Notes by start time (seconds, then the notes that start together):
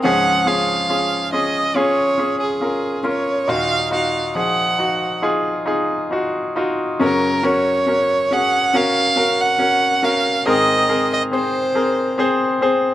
0.03 C#2 G#2 F3 C#4 G#4 F#5
0.46 C#4 F4 G#4 F5
0.89 C#4 F4 G#4
1.32 C#4 F4 G#4 D#5
1.75 C#4 F4 G#4 C#5
2.18 C#4 F4 G#4
2.40 G#4
2.61 C#4 F4 A#4
3.03 C#4 F4 A#4 C#5
3.48 D#2 A#2 D#4 F4 F#4 F5
3.91 D#4 F4 F#4 F5
4.35 F3 D#4 G#4 F#5
4.79 D#4 F#4
5.22 D#4 F4 G#4
5.66 D#4 F4 G#4
6.11 D#4 F4 F#4
6.56 D#4 F4 F#4
6.99 F#2 C#3 C#4 F#4 A#4
7.43 C#4 F#4 A#4 C#5
7.87 C#4 F#4 A#4
8.31 C#4 F#4 G#4 F#5
8.74 C#4 F#4 A#4 F5
9.16 C#4 F#4 A#4
9.40 F#5
9.58 C#4 F#4 A#4
10.03 C#4 F#4 A#4 F5
10.46 G#2 D#3 C4 G#4 A#4 D#5
10.88 C4 G#4 A#4
11.13 D#5
11.31 C4 G#4 C5
11.75 C4 G#4 A#4
12.18 C4 G#4 C5
12.61 C4 G#4 C5